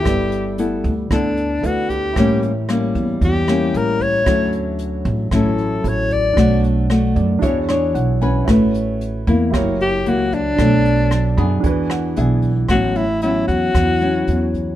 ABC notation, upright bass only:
X:1
M:4/4
L:1/8
Q:1/4=114
K:A
V:1 name="Upright bass" clef=bass
=G,,,3 D,, D,,2 D,,2 | A,,,3 E,, E,,2 A,,,2 | D,,3 A,,, A,,,2 A,,,2 | B,,,3 F,, E,,2 B,,,2 |
A,,,3 E,, F,,,2 C,,2 | B,,,3 F,, E,,2 B,,,2 | A,,,3 E,, E,,2 E,,2 |]